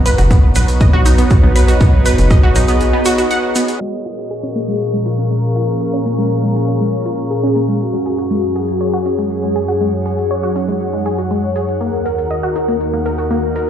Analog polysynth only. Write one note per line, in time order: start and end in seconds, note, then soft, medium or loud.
5.31 6.71 A#4 loud
7.31 7.77 G#4 medium
7.81 9.21 F#4 loud
9.31 10.71 G#4 loud
11.31 11.77 C#5 medium
11.81 13.21 A#4 loud
13.31 13.70 A#4 loud